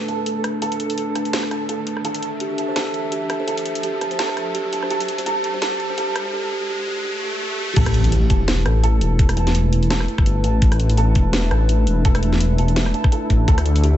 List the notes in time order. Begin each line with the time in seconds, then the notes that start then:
Already playing: A3 D4 A4 B4, riser
0.08 A5, closed hi-hat
0.26 closed hi-hat
0.44 cross-stick, closed hi-hat
0.62 A4, closed hi-hat
0.72 open hi-hat
0.80 closed hi-hat
0.90 open hi-hat
0.98 closed hi-hat
1.15 A5, cross-stick, closed hi-hat
1.25 open hi-hat
1.33 snare, closed hi-hat
1.43 cross-stick
1.51 A5, cross-stick, closed hi-hat
1.69 A4, closed hi-hat
1.87 closed hi-hat
1.97 cross-stick
2.05 A4 E5, closed hi-hat
2.15 open hi-hat
2.23 closed hi-hat
2.40 G4, closed hi-hat
2.50 G4
2.58 A5, closed hi-hat
2.68 C5
2.76 A4, snare, closed hi-hat
2.94 closed hi-hat
3.12 G4, closed hi-hat
3.22 G4
3.30 A5, cross-stick, closed hi-hat
3.40 C5
3.48 A4, closed hi-hat
3.57 open hi-hat
3.66 closed hi-hat
3.75 open hi-hat
3.83 G4, closed hi-hat
3.94 G4
4.01 A5, cross-stick, closed hi-hat
4.11 C5, open hi-hat
4.19 A4, snare, closed hi-hat
4.29 cross-stick
4.37 cross-stick, closed hi-hat
4.55 G4, closed hi-hat
4.65 G4
4.73 A5, closed hi-hat
4.83 C5, cross-stick
4.91 G4 A4, closed hi-hat
5.00 G4, open hi-hat
5.08 closed hi-hat
5.18 C5, open hi-hat
5.26 G4 A4, closed hi-hat
5.36 G4
5.44 closed hi-hat
5.54 C5
5.62 G4 A4, snare, closed hi-hat
5.72 G4
5.80 closed hi-hat
5.90 C5
5.98 G4 A4, closed hi-hat
6.07 G4
6.16 cross-stick, closed hi-hat
6.25 C5
6.33 G4
6.43 G4
6.51 G4
6.61 G4
6.69 G4
6.79 G4
6.87 G4
6.97 G4
7.05 G4, swell
7.15 G4
7.23 G4
7.33 G4
7.41 G4
7.51 G4
7.58 G4
7.68 G4
7.76 A1 A3 E4 A4 B4, kick, closed hi-hat, crash, impact
7.86 cross-stick, open hi-hat
7.94 closed hi-hat
8.04 open hi-hat
8.12 G4, closed hi-hat
8.22 G4
8.30 E1 A5, kick, closed hi-hat
8.48 snare, closed hi-hat
8.66 A1 A4, cross-stick, closed hi-hat
8.83 A4, closed hi-hat
9.01 E1, closed hi-hat
9.19 kick, closed hi-hat
9.29 cross-stick, open hi-hat
9.37 A5, closed hi-hat
9.47 snare, open hi-hat
9.55 closed hi-hat
9.73 E1, closed hi-hat
9.83 open hi-hat
9.90 A4, snare, closed hi-hat
10.00 cross-stick
10.08 closed hi-hat
10.18 G1, kick, cross-stick
10.26 closed hi-hat
10.44 A1 A5, closed hi-hat
10.62 A1 D4, kick, closed hi-hat
10.72 cross-stick, open hi-hat
10.80 closed hi-hat
10.90 open hi-hat
10.97 A4, closed hi-hat
11.15 E1, kick, closed hi-hat
11.33 snare, closed hi-hat
11.51 A1 A5, cross-stick, closed hi-hat
11.69 closed hi-hat
11.87 E1, closed hi-hat
12.05 A4, kick, closed hi-hat
12.15 cross-stick, open hi-hat
12.23 closed hi-hat
12.33 snare
12.40 closed hi-hat, open hi-hat
12.58 E1 A5, closed hi-hat
12.68 open hi-hat
12.76 snare, closed hi-hat
12.86 cross-stick
12.94 A5, closed hi-hat
13.04 kick, cross-stick
13.12 A4, closed hi-hat
13.30 A1, kick, closed hi-hat
13.48 D2 A4 E5, kick, closed hi-hat
13.58 cross-stick, open hi-hat
13.66 closed hi-hat
13.76 open hi-hat
13.83 G4, closed hi-hat
13.94 G4